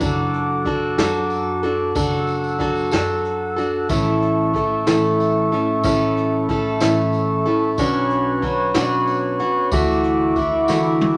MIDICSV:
0, 0, Header, 1, 5, 480
1, 0, Start_track
1, 0, Key_signature, 2, "major"
1, 0, Tempo, 646552
1, 17, Time_signature, 6, 3, 24, 8
1, 8293, End_track
2, 0, Start_track
2, 0, Title_t, "Accordion"
2, 0, Program_c, 0, 21
2, 25, Note_on_c, 0, 69, 72
2, 25, Note_on_c, 0, 86, 81
2, 27, Note_on_c, 0, 78, 61
2, 1449, Note_off_c, 0, 86, 0
2, 1458, Note_on_c, 0, 88, 79
2, 2876, Note_off_c, 0, 78, 0
2, 2885, Note_off_c, 0, 88, 0
2, 2892, Note_on_c, 0, 76, 68
2, 2897, Note_on_c, 0, 85, 79
2, 5746, Note_off_c, 0, 76, 0
2, 5754, Note_off_c, 0, 69, 0
2, 5782, Note_on_c, 0, 73, 63
2, 5787, Note_on_c, 0, 71, 77
2, 7187, Note_off_c, 0, 85, 0
2, 7205, Note_off_c, 0, 73, 0
2, 7208, Note_off_c, 0, 71, 0
2, 7211, Note_on_c, 0, 66, 75
2, 7213, Note_on_c, 0, 76, 67
2, 7213, Note_on_c, 0, 86, 84
2, 8293, Note_off_c, 0, 66, 0
2, 8293, Note_off_c, 0, 76, 0
2, 8293, Note_off_c, 0, 86, 0
2, 8293, End_track
3, 0, Start_track
3, 0, Title_t, "Steel-string acoustic guitar"
3, 0, Program_c, 1, 25
3, 0, Note_on_c, 1, 54, 84
3, 3, Note_on_c, 1, 62, 80
3, 8, Note_on_c, 1, 66, 83
3, 12, Note_on_c, 1, 69, 82
3, 474, Note_off_c, 1, 54, 0
3, 478, Note_off_c, 1, 62, 0
3, 482, Note_on_c, 1, 54, 61
3, 487, Note_off_c, 1, 66, 0
3, 487, Note_on_c, 1, 62, 67
3, 496, Note_on_c, 1, 66, 68
3, 497, Note_off_c, 1, 69, 0
3, 500, Note_on_c, 1, 69, 73
3, 721, Note_off_c, 1, 66, 0
3, 722, Note_off_c, 1, 69, 0
3, 727, Note_off_c, 1, 62, 0
3, 730, Note_on_c, 1, 66, 74
3, 731, Note_off_c, 1, 54, 0
3, 731, Note_on_c, 1, 69, 76
3, 736, Note_on_c, 1, 62, 70
3, 739, Note_on_c, 1, 54, 66
3, 1208, Note_off_c, 1, 69, 0
3, 1209, Note_off_c, 1, 66, 0
3, 1211, Note_on_c, 1, 69, 57
3, 1218, Note_off_c, 1, 62, 0
3, 1218, Note_on_c, 1, 66, 52
3, 1220, Note_off_c, 1, 54, 0
3, 1228, Note_on_c, 1, 62, 43
3, 1444, Note_off_c, 1, 62, 0
3, 1447, Note_off_c, 1, 66, 0
3, 1449, Note_on_c, 1, 54, 78
3, 1450, Note_off_c, 1, 69, 0
3, 1453, Note_on_c, 1, 62, 82
3, 1456, Note_on_c, 1, 66, 85
3, 1459, Note_on_c, 1, 69, 87
3, 1910, Note_off_c, 1, 54, 0
3, 1918, Note_off_c, 1, 62, 0
3, 1919, Note_on_c, 1, 54, 64
3, 1926, Note_off_c, 1, 66, 0
3, 1927, Note_on_c, 1, 62, 67
3, 1934, Note_on_c, 1, 66, 66
3, 1935, Note_off_c, 1, 69, 0
3, 1938, Note_on_c, 1, 69, 65
3, 2161, Note_off_c, 1, 69, 0
3, 2165, Note_off_c, 1, 66, 0
3, 2170, Note_off_c, 1, 54, 0
3, 2170, Note_off_c, 1, 62, 0
3, 2170, Note_on_c, 1, 69, 76
3, 2174, Note_on_c, 1, 66, 74
3, 2178, Note_on_c, 1, 54, 59
3, 2178, Note_on_c, 1, 62, 65
3, 2643, Note_off_c, 1, 69, 0
3, 2646, Note_on_c, 1, 69, 53
3, 2650, Note_off_c, 1, 66, 0
3, 2654, Note_off_c, 1, 62, 0
3, 2659, Note_on_c, 1, 66, 50
3, 2660, Note_off_c, 1, 54, 0
3, 2663, Note_on_c, 1, 62, 43
3, 2890, Note_on_c, 1, 45, 74
3, 2891, Note_off_c, 1, 69, 0
3, 2892, Note_on_c, 1, 52, 78
3, 2893, Note_on_c, 1, 57, 76
3, 2895, Note_off_c, 1, 62, 0
3, 2895, Note_off_c, 1, 66, 0
3, 2898, Note_on_c, 1, 61, 85
3, 2898, Note_on_c, 1, 64, 85
3, 2900, Note_on_c, 1, 69, 79
3, 3358, Note_off_c, 1, 57, 0
3, 3367, Note_on_c, 1, 57, 61
3, 3368, Note_off_c, 1, 64, 0
3, 3371, Note_off_c, 1, 61, 0
3, 3374, Note_on_c, 1, 61, 69
3, 3375, Note_off_c, 1, 45, 0
3, 3375, Note_off_c, 1, 69, 0
3, 3376, Note_on_c, 1, 64, 68
3, 3377, Note_off_c, 1, 52, 0
3, 3384, Note_on_c, 1, 69, 64
3, 3609, Note_off_c, 1, 69, 0
3, 3612, Note_off_c, 1, 61, 0
3, 3612, Note_off_c, 1, 64, 0
3, 3614, Note_off_c, 1, 57, 0
3, 3618, Note_on_c, 1, 69, 77
3, 3621, Note_on_c, 1, 61, 68
3, 3621, Note_on_c, 1, 64, 74
3, 3625, Note_on_c, 1, 52, 65
3, 3625, Note_on_c, 1, 57, 63
3, 3626, Note_on_c, 1, 45, 61
3, 4089, Note_off_c, 1, 69, 0
3, 4092, Note_off_c, 1, 64, 0
3, 4098, Note_on_c, 1, 69, 59
3, 4101, Note_on_c, 1, 64, 56
3, 4103, Note_off_c, 1, 45, 0
3, 4103, Note_off_c, 1, 52, 0
3, 4103, Note_off_c, 1, 57, 0
3, 4107, Note_off_c, 1, 61, 0
3, 4110, Note_on_c, 1, 61, 54
3, 4113, Note_on_c, 1, 57, 47
3, 4330, Note_off_c, 1, 57, 0
3, 4331, Note_off_c, 1, 61, 0
3, 4332, Note_on_c, 1, 45, 77
3, 4333, Note_off_c, 1, 64, 0
3, 4335, Note_on_c, 1, 52, 80
3, 4339, Note_off_c, 1, 69, 0
3, 4339, Note_on_c, 1, 57, 78
3, 4340, Note_on_c, 1, 61, 83
3, 4342, Note_on_c, 1, 64, 81
3, 4347, Note_on_c, 1, 69, 83
3, 4809, Note_off_c, 1, 57, 0
3, 4816, Note_off_c, 1, 45, 0
3, 4818, Note_off_c, 1, 52, 0
3, 4818, Note_on_c, 1, 57, 69
3, 4821, Note_off_c, 1, 61, 0
3, 4821, Note_off_c, 1, 64, 0
3, 4824, Note_off_c, 1, 69, 0
3, 4824, Note_on_c, 1, 61, 68
3, 4830, Note_on_c, 1, 64, 66
3, 4833, Note_on_c, 1, 69, 79
3, 5049, Note_off_c, 1, 69, 0
3, 5051, Note_off_c, 1, 64, 0
3, 5053, Note_off_c, 1, 57, 0
3, 5055, Note_off_c, 1, 61, 0
3, 5058, Note_on_c, 1, 69, 78
3, 5060, Note_on_c, 1, 64, 81
3, 5062, Note_on_c, 1, 57, 74
3, 5064, Note_on_c, 1, 61, 78
3, 5065, Note_on_c, 1, 52, 67
3, 5068, Note_on_c, 1, 45, 67
3, 5526, Note_off_c, 1, 69, 0
3, 5535, Note_off_c, 1, 64, 0
3, 5535, Note_on_c, 1, 69, 52
3, 5541, Note_off_c, 1, 57, 0
3, 5542, Note_off_c, 1, 52, 0
3, 5542, Note_off_c, 1, 61, 0
3, 5543, Note_on_c, 1, 64, 56
3, 5544, Note_off_c, 1, 45, 0
3, 5550, Note_on_c, 1, 61, 51
3, 5555, Note_on_c, 1, 57, 48
3, 5777, Note_off_c, 1, 61, 0
3, 5777, Note_off_c, 1, 69, 0
3, 5778, Note_on_c, 1, 47, 83
3, 5781, Note_off_c, 1, 57, 0
3, 5782, Note_off_c, 1, 64, 0
3, 5784, Note_on_c, 1, 54, 89
3, 5784, Note_on_c, 1, 62, 79
3, 5786, Note_on_c, 1, 61, 86
3, 5790, Note_on_c, 1, 66, 98
3, 6250, Note_off_c, 1, 54, 0
3, 6253, Note_on_c, 1, 54, 64
3, 6254, Note_off_c, 1, 62, 0
3, 6255, Note_off_c, 1, 61, 0
3, 6257, Note_on_c, 1, 62, 72
3, 6258, Note_off_c, 1, 47, 0
3, 6264, Note_on_c, 1, 61, 67
3, 6266, Note_off_c, 1, 66, 0
3, 6269, Note_on_c, 1, 66, 78
3, 6487, Note_off_c, 1, 66, 0
3, 6492, Note_off_c, 1, 61, 0
3, 6493, Note_off_c, 1, 62, 0
3, 6496, Note_off_c, 1, 54, 0
3, 6496, Note_on_c, 1, 66, 79
3, 6501, Note_on_c, 1, 61, 74
3, 6502, Note_on_c, 1, 62, 82
3, 6505, Note_on_c, 1, 54, 69
3, 6511, Note_on_c, 1, 47, 68
3, 6970, Note_off_c, 1, 66, 0
3, 6979, Note_on_c, 1, 66, 62
3, 6980, Note_off_c, 1, 61, 0
3, 6982, Note_off_c, 1, 54, 0
3, 6984, Note_off_c, 1, 47, 0
3, 6987, Note_on_c, 1, 61, 53
3, 6990, Note_off_c, 1, 62, 0
3, 6993, Note_on_c, 1, 62, 48
3, 7218, Note_off_c, 1, 66, 0
3, 7218, Note_on_c, 1, 50, 74
3, 7222, Note_on_c, 1, 52, 79
3, 7223, Note_off_c, 1, 61, 0
3, 7223, Note_off_c, 1, 62, 0
3, 7226, Note_on_c, 1, 57, 84
3, 7227, Note_on_c, 1, 66, 91
3, 7229, Note_on_c, 1, 64, 87
3, 7684, Note_off_c, 1, 52, 0
3, 7691, Note_off_c, 1, 57, 0
3, 7693, Note_on_c, 1, 52, 59
3, 7698, Note_off_c, 1, 50, 0
3, 7698, Note_off_c, 1, 64, 0
3, 7700, Note_on_c, 1, 57, 63
3, 7702, Note_off_c, 1, 66, 0
3, 7707, Note_on_c, 1, 64, 77
3, 7714, Note_on_c, 1, 66, 73
3, 7925, Note_off_c, 1, 66, 0
3, 7927, Note_off_c, 1, 64, 0
3, 7932, Note_off_c, 1, 52, 0
3, 7932, Note_off_c, 1, 57, 0
3, 7934, Note_on_c, 1, 66, 86
3, 7935, Note_on_c, 1, 64, 70
3, 7941, Note_on_c, 1, 52, 69
3, 7941, Note_on_c, 1, 57, 75
3, 7946, Note_on_c, 1, 50, 68
3, 8293, Note_off_c, 1, 50, 0
3, 8293, Note_off_c, 1, 52, 0
3, 8293, Note_off_c, 1, 57, 0
3, 8293, Note_off_c, 1, 64, 0
3, 8293, Note_off_c, 1, 66, 0
3, 8293, End_track
4, 0, Start_track
4, 0, Title_t, "Upright bass"
4, 0, Program_c, 2, 32
4, 8, Note_on_c, 2, 30, 98
4, 704, Note_off_c, 2, 30, 0
4, 733, Note_on_c, 2, 42, 88
4, 1427, Note_off_c, 2, 42, 0
4, 1449, Note_on_c, 2, 30, 92
4, 2145, Note_off_c, 2, 30, 0
4, 2174, Note_on_c, 2, 42, 77
4, 2868, Note_off_c, 2, 42, 0
4, 2889, Note_on_c, 2, 33, 87
4, 3585, Note_off_c, 2, 33, 0
4, 3614, Note_on_c, 2, 45, 84
4, 4308, Note_off_c, 2, 45, 0
4, 4335, Note_on_c, 2, 33, 91
4, 5028, Note_off_c, 2, 33, 0
4, 5059, Note_on_c, 2, 45, 77
4, 5749, Note_off_c, 2, 45, 0
4, 5773, Note_on_c, 2, 35, 97
4, 6466, Note_off_c, 2, 35, 0
4, 6494, Note_on_c, 2, 47, 80
4, 7186, Note_off_c, 2, 47, 0
4, 7211, Note_on_c, 2, 38, 96
4, 7904, Note_off_c, 2, 38, 0
4, 7933, Note_on_c, 2, 50, 81
4, 8293, Note_off_c, 2, 50, 0
4, 8293, End_track
5, 0, Start_track
5, 0, Title_t, "Drums"
5, 4, Note_on_c, 9, 54, 89
5, 5, Note_on_c, 9, 42, 64
5, 11, Note_on_c, 9, 36, 83
5, 78, Note_off_c, 9, 54, 0
5, 79, Note_off_c, 9, 42, 0
5, 85, Note_off_c, 9, 36, 0
5, 249, Note_on_c, 9, 42, 48
5, 323, Note_off_c, 9, 42, 0
5, 490, Note_on_c, 9, 42, 49
5, 491, Note_on_c, 9, 36, 58
5, 564, Note_off_c, 9, 42, 0
5, 565, Note_off_c, 9, 36, 0
5, 728, Note_on_c, 9, 38, 88
5, 728, Note_on_c, 9, 42, 60
5, 732, Note_on_c, 9, 54, 81
5, 802, Note_off_c, 9, 38, 0
5, 802, Note_off_c, 9, 42, 0
5, 806, Note_off_c, 9, 54, 0
5, 966, Note_on_c, 9, 54, 26
5, 971, Note_on_c, 9, 42, 47
5, 1040, Note_off_c, 9, 54, 0
5, 1045, Note_off_c, 9, 42, 0
5, 1207, Note_on_c, 9, 42, 46
5, 1281, Note_off_c, 9, 42, 0
5, 1445, Note_on_c, 9, 42, 65
5, 1451, Note_on_c, 9, 36, 86
5, 1452, Note_on_c, 9, 54, 88
5, 1519, Note_off_c, 9, 42, 0
5, 1526, Note_off_c, 9, 36, 0
5, 1526, Note_off_c, 9, 54, 0
5, 1566, Note_on_c, 9, 54, 27
5, 1640, Note_off_c, 9, 54, 0
5, 1685, Note_on_c, 9, 54, 26
5, 1692, Note_on_c, 9, 42, 47
5, 1760, Note_off_c, 9, 54, 0
5, 1766, Note_off_c, 9, 42, 0
5, 1810, Note_on_c, 9, 54, 25
5, 1884, Note_off_c, 9, 54, 0
5, 1929, Note_on_c, 9, 54, 26
5, 1931, Note_on_c, 9, 42, 49
5, 1932, Note_on_c, 9, 36, 59
5, 2003, Note_off_c, 9, 54, 0
5, 2005, Note_off_c, 9, 42, 0
5, 2006, Note_off_c, 9, 36, 0
5, 2046, Note_on_c, 9, 54, 24
5, 2120, Note_off_c, 9, 54, 0
5, 2163, Note_on_c, 9, 54, 84
5, 2171, Note_on_c, 9, 38, 83
5, 2171, Note_on_c, 9, 42, 64
5, 2237, Note_off_c, 9, 54, 0
5, 2246, Note_off_c, 9, 38, 0
5, 2246, Note_off_c, 9, 42, 0
5, 2287, Note_on_c, 9, 54, 27
5, 2361, Note_off_c, 9, 54, 0
5, 2410, Note_on_c, 9, 42, 49
5, 2484, Note_off_c, 9, 42, 0
5, 2653, Note_on_c, 9, 42, 49
5, 2659, Note_on_c, 9, 54, 29
5, 2728, Note_off_c, 9, 42, 0
5, 2733, Note_off_c, 9, 54, 0
5, 2886, Note_on_c, 9, 42, 66
5, 2891, Note_on_c, 9, 36, 91
5, 2891, Note_on_c, 9, 54, 90
5, 2960, Note_off_c, 9, 42, 0
5, 2966, Note_off_c, 9, 36, 0
5, 2966, Note_off_c, 9, 54, 0
5, 3133, Note_on_c, 9, 42, 52
5, 3207, Note_off_c, 9, 42, 0
5, 3376, Note_on_c, 9, 36, 57
5, 3379, Note_on_c, 9, 42, 52
5, 3450, Note_off_c, 9, 36, 0
5, 3453, Note_off_c, 9, 42, 0
5, 3613, Note_on_c, 9, 38, 83
5, 3613, Note_on_c, 9, 42, 67
5, 3616, Note_on_c, 9, 54, 91
5, 3687, Note_off_c, 9, 38, 0
5, 3687, Note_off_c, 9, 42, 0
5, 3690, Note_off_c, 9, 54, 0
5, 3861, Note_on_c, 9, 54, 30
5, 3862, Note_on_c, 9, 42, 49
5, 3935, Note_off_c, 9, 54, 0
5, 3937, Note_off_c, 9, 42, 0
5, 4104, Note_on_c, 9, 42, 50
5, 4178, Note_off_c, 9, 42, 0
5, 4332, Note_on_c, 9, 54, 94
5, 4338, Note_on_c, 9, 36, 88
5, 4340, Note_on_c, 9, 42, 67
5, 4407, Note_off_c, 9, 54, 0
5, 4412, Note_off_c, 9, 36, 0
5, 4414, Note_off_c, 9, 42, 0
5, 4580, Note_on_c, 9, 42, 52
5, 4654, Note_off_c, 9, 42, 0
5, 4817, Note_on_c, 9, 36, 64
5, 4817, Note_on_c, 9, 42, 48
5, 4891, Note_off_c, 9, 36, 0
5, 4891, Note_off_c, 9, 42, 0
5, 5052, Note_on_c, 9, 54, 93
5, 5054, Note_on_c, 9, 38, 89
5, 5054, Note_on_c, 9, 42, 65
5, 5126, Note_off_c, 9, 54, 0
5, 5128, Note_off_c, 9, 38, 0
5, 5128, Note_off_c, 9, 42, 0
5, 5291, Note_on_c, 9, 54, 27
5, 5298, Note_on_c, 9, 42, 46
5, 5365, Note_off_c, 9, 54, 0
5, 5372, Note_off_c, 9, 42, 0
5, 5535, Note_on_c, 9, 42, 46
5, 5609, Note_off_c, 9, 42, 0
5, 5771, Note_on_c, 9, 42, 66
5, 5775, Note_on_c, 9, 54, 81
5, 5776, Note_on_c, 9, 36, 85
5, 5845, Note_off_c, 9, 42, 0
5, 5849, Note_off_c, 9, 54, 0
5, 5850, Note_off_c, 9, 36, 0
5, 6014, Note_on_c, 9, 42, 51
5, 6088, Note_off_c, 9, 42, 0
5, 6253, Note_on_c, 9, 42, 49
5, 6255, Note_on_c, 9, 36, 62
5, 6328, Note_off_c, 9, 42, 0
5, 6329, Note_off_c, 9, 36, 0
5, 6490, Note_on_c, 9, 38, 93
5, 6490, Note_on_c, 9, 42, 68
5, 6493, Note_on_c, 9, 54, 84
5, 6565, Note_off_c, 9, 38, 0
5, 6565, Note_off_c, 9, 42, 0
5, 6568, Note_off_c, 9, 54, 0
5, 6733, Note_on_c, 9, 42, 51
5, 6740, Note_on_c, 9, 54, 28
5, 6808, Note_off_c, 9, 42, 0
5, 6814, Note_off_c, 9, 54, 0
5, 6972, Note_on_c, 9, 42, 48
5, 7046, Note_off_c, 9, 42, 0
5, 7213, Note_on_c, 9, 42, 72
5, 7213, Note_on_c, 9, 54, 91
5, 7215, Note_on_c, 9, 36, 89
5, 7287, Note_off_c, 9, 42, 0
5, 7287, Note_off_c, 9, 54, 0
5, 7289, Note_off_c, 9, 36, 0
5, 7336, Note_on_c, 9, 54, 27
5, 7410, Note_off_c, 9, 54, 0
5, 7450, Note_on_c, 9, 42, 53
5, 7524, Note_off_c, 9, 42, 0
5, 7687, Note_on_c, 9, 42, 54
5, 7692, Note_on_c, 9, 36, 62
5, 7693, Note_on_c, 9, 54, 29
5, 7761, Note_off_c, 9, 42, 0
5, 7766, Note_off_c, 9, 36, 0
5, 7767, Note_off_c, 9, 54, 0
5, 7929, Note_on_c, 9, 54, 87
5, 7933, Note_on_c, 9, 38, 49
5, 8003, Note_off_c, 9, 54, 0
5, 8007, Note_off_c, 9, 38, 0
5, 8174, Note_on_c, 9, 48, 61
5, 8248, Note_off_c, 9, 48, 0
5, 8293, End_track
0, 0, End_of_file